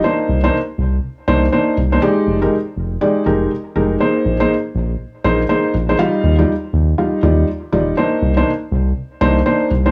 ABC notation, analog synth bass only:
X:1
M:4/4
L:1/8
Q:"Swing 16ths" 1/4=121
K:Cm
V:1 name="Analog synth bass" clef=bass
z C,, z C,, z C,, z C,, | z F,,, z F,,, z F,,, z F,,, | z B,,, z B,,, z B,,, z B,,, | z E,, z E,, z E,, z E,,, |
z C,, z C,, z C,, z C,, |]